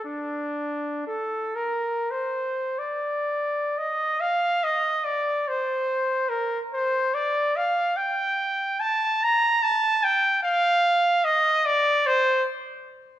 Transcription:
0.05 1.04 D4 soft
1.07 1.56 A4 medium
1.55 2.12 A#4 medium
2.10 2.80 C5 soft
2.78 3.79 D5 medium
3.78 4.22 D#5 medium
4.20 4.65 F5 medium
4.63 5.06 D#5 medium
5.04 5.49 D5 medium
5.48 6.30 C5 medium
6.29 6.61 A#4 medium
6.73 7.16 C5 medium
7.14 7.58 D5 medium
7.56 7.98 F5 medium
7.96 8.81 G5 medium
8.80 9.25 A5 medium
9.23 9.64 A#5 medium
9.63 10.05 A5 medium
10.03 10.42 G5 medium
10.43 11.26 F5 medium
11.24 11.67 D#5 medium
11.65 12.08 D5 medium
12.06 12.46 C5 medium

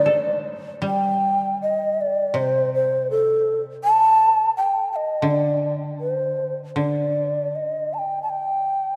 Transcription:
0.00 1.58 D3 medium
0.00 1.02 A3 soft
0.00 1.22 D4 soft
0.00 1.41 D#4 soft
0.00 0.40 D5 loud
0.06 1.61 A4 soft
0.82 3.08 G3 soft
0.87 1.58 G5 medium
1.62 2.02 D#5 medium
2.01 2.38 D5 medium
2.34 4.53 C3 medium
2.34 2.73 C5 medium
2.74 3.07 C5 medium
3.11 3.61 A4 medium
3.84 4.51 A5 loud
4.57 4.89 G5 medium
4.92 5.29 D#5 medium
4.92 4.97 G5 medium
5.22 6.75 D3 soft
5.28 5.73 D5 medium
6.00 6.11 B4 medium
6.11 6.55 C5 medium
6.76 8.96 D3 soft
6.76 7.57 D5 medium
7.56 7.95 D#5 medium
7.94 8.00 A5 medium
7.99 8.22 G5 medium
8.23 8.31 A5 soft
8.30 8.96 G5 medium

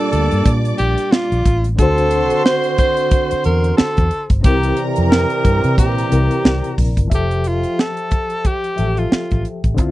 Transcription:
0.00 1.41 A#2 medium
0.00 1.41 G3 medium
0.00 1.73 G3 medium
0.00 1.77 A#3 medium
0.00 1.41 D4 medium
0.00 1.74 D4 medium
0.00 1.76 F4 medium
0.00 1.42 D5 loud
0.00 1.41 D6 loud
0.12 0.28 D2 medium
0.12 0.49 A4 medium
0.12 closed hi-hat medium
0.31 0.43 G2 medium
0.31 closed hi-hat medium
0.45 0.72 A#2 medium
0.45 kick loud
0.45 closed hi-hat medium
0.65 closed hi-hat medium
0.78 0.94 A#1 medium
0.78 1.13 G4 medium
0.78 closed hi-hat medium
0.98 closed hi-hat soft
1.12 1.64 F4 medium
1.12 snare loud
1.32 1.42 A#1 medium
1.32 closed hi-hat soft
1.45 1.79 A1 medium
1.45 kick medium
1.45 closed hi-hat medium
1.64 closed hi-hat soft
1.76 2.31 D2 loud
1.76 4.40 D3 medium
1.76 4.08 D3 medium
1.76 4.08 C4 medium
1.76 4.41 D4 medium
1.76 4.08 F#4 medium
1.76 2.41 A4 loud
1.76 4.07 C5 medium
1.76 4.08 C6 loud
1.76 kick loud
1.76 closed hi-hat medium
1.80 4.42 F#4 medium
1.80 4.43 C5 medium
1.98 closed hi-hat soft
2.11 closed hi-hat medium
2.30 closed hi-hat medium
2.45 2.76 C5 loud
2.45 snare loud
2.64 closed hi-hat soft
2.78 3.41 C5 loud
2.78 kick medium
2.78 closed hi-hat medium
2.97 closed hi-hat soft
3.11 kick medium
3.11 closed hi-hat medium
3.31 muted fingered electric bass stroke soft
3.31 closed hi-hat medium
3.44 3.72 E2 medium
3.44 3.76 A#4 medium
3.44 closed hi-hat medium
3.64 closed hi-hat soft
3.77 4.26 A4 medium
3.77 muted fingered electric bass stroke soft
3.77 snare loud
3.97 4.09 E2 medium
3.97 kick medium
3.97 closed hi-hat soft
4.11 closed hi-hat medium
4.30 4.41 G1 medium
4.30 kick medium
4.30 closed hi-hat soft
4.41 4.71 C2 loud
4.41 6.06 C3 medium
4.41 6.74 E3 medium
4.41 6.07 C4 medium
4.41 6.74 C4 medium
4.41 6.74 G4 medium
4.41 4.83 G4 medium
4.41 6.74 A#4 medium
4.41 6.74 A#5 loud
4.41 kick loud
4.41 closed hi-hat medium
4.46 6.09 E4 medium
4.46 6.10 A#4 medium
4.63 closed hi-hat medium
4.77 7.17 D5 medium
4.77 closed hi-hat medium
4.96 5.24 F2 medium
4.96 closed hi-hat soft
5.11 5.74 A#4 loud
5.11 snare loud
5.30 closed hi-hat soft
5.45 5.60 G2 medium
5.45 kick medium
5.45 closed hi-hat medium
5.64 5.78 C3 medium
5.64 closed hi-hat medium
5.78 6.04 A#2 medium
5.78 6.74 G4 medium
5.78 kick loud
5.78 closed hi-hat medium
5.98 closed hi-hat medium
6.09 6.27 C2 medium
6.09 7.10 C3 soft
6.09 7.11 C4 soft
6.09 7.11 E4 soft
6.09 7.12 A#4 medium
6.09 closed hi-hat medium
6.31 closed hi-hat soft
6.45 6.60 C2 medium
6.45 snare loud
6.64 closed hi-hat soft
6.78 6.93 A#1 medium
6.78 kick medium
6.78 open hi-hat medium
6.97 7.08 G1 medium
6.97 kick medium
6.97 closed hi-hat soft
7.08 7.64 F1 medium
7.08 8.73 F3 medium
7.08 9.50 C5 soft
7.08 8.74 E5 medium
7.08 kick loud
7.12 8.76 G4 medium
7.12 7.49 G4 medium
7.12 8.77 A4 medium
7.12 closed hi-hat medium
7.31 closed hi-hat soft
7.37 9.70 E5 soft
7.44 7.81 F4 medium
7.44 closed hi-hat medium
7.53 9.88 G5 soft
7.63 closed hi-hat soft
7.77 9.91 A4 medium
7.77 8.48 A4 loud
7.77 snare medium
7.97 closed hi-hat soft
8.11 kick medium
8.11 closed hi-hat medium
8.30 closed hi-hat soft
8.45 9.00 G4 medium
8.45 kick medium
8.45 closed hi-hat medium
8.64 closed hi-hat soft
8.76 9.05 A1 medium
8.76 9.78 F3 soft
8.76 9.79 G4 soft
8.76 9.79 A4 soft
8.76 9.78 E5 soft
8.76 closed hi-hat medium
8.97 9.46 F4 medium
8.97 closed hi-hat soft
9.12 muted fingered electric bass stroke soft
9.12 snare loud
9.31 9.43 A1 medium
9.31 kick medium
9.31 closed hi-hat soft
9.45 closed hi-hat medium
9.64 9.79 A1 medium
9.64 kick medium
9.64 closed hi-hat soft
9.74 9.91 D3 medium
9.74 9.91 C4 medium
9.74 kick medium
9.74 closed hi-hat medium
9.79 9.91 D2 loud
9.79 9.91 E4 medium
9.79 9.91 F4 medium

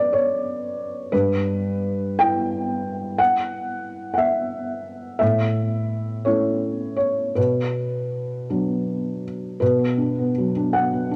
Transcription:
0.00 1.09 F#3 soft
0.00 1.10 C#4 soft
0.00 1.10 F#4 soft
0.00 1.12 B4 medium
0.00 0.13 D5 medium
0.13 1.12 C#5 medium
1.12 2.17 G2 medium
1.12 2.19 B4 medium
2.19 5.17 B3 soft
2.19 5.18 E4 soft
2.19 3.19 G5 medium
3.19 4.12 F#5 medium
4.14 4.20 F#5 medium
4.18 5.17 E5 medium
5.19 6.23 A2 soft
5.19 6.25 E5 medium
6.25 7.33 A3 soft
6.25 7.33 C#4 soft
6.25 7.33 E4 soft
6.25 6.95 C#5 medium
6.96 7.35 C#5 medium
7.35 8.45 B2 soft
7.35 9.23 B4 medium
8.50 9.57 F#3 soft
8.50 9.57 B3 soft
8.50 9.57 D4 soft
9.60 11.16 B2 medium
9.60 10.74 B4 medium
9.79 10.09 B3 soft
9.98 10.29 D4 soft
10.19 10.49 B3 soft
10.38 10.68 F#3 soft
10.57 11.10 D4 soft
10.73 11.16 F#5 medium
10.93 11.16 B3 soft
11.11 11.16 D4 soft

